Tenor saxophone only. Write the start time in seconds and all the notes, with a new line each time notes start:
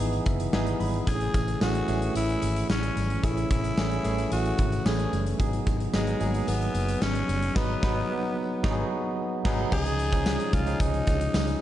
Already playing: B3
1.08 G#4
1.62 F#4
2.17 E4
2.70 C#4
3.24 E4
3.51 E4
4.32 F#4
4.86 G#4
5.94 G#3
6.48 B3
7.02 C#4
7.56 B3
9.73 G#4
10.54 F4
10.81 D#4